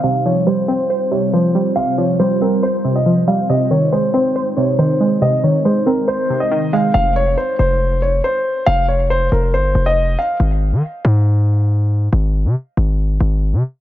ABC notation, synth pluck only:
X:1
M:4/4
L:1/8
Q:1/4=139
K:Fm
V:1 name="Synth pluck" clef=bass
C, F, G, C c C, F, G, | C, F, G, C c C, F, G, | C, E, A, C c C, E, A, | C, E, A, C c C, E, A, |
z8 | z8 | z8 | z8 |]